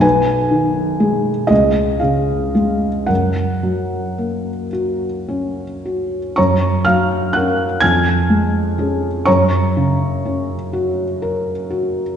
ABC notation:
X:1
M:12/8
L:1/8
Q:3/8=41
K:F#
V:1 name="Felt piano"
[Bg]3 [Gd] [Ge]2 [Af]3 z3 | [cac'] [ee'] [ff'] [ge'g']3 [cac']6 |]
V:2 name="Felt piano"
B,,, D, [G,G] C,, C, [G,G] F,, F, A, F C F | F,, F, [CA] E,, G, [CG] F,, C, C F A F |]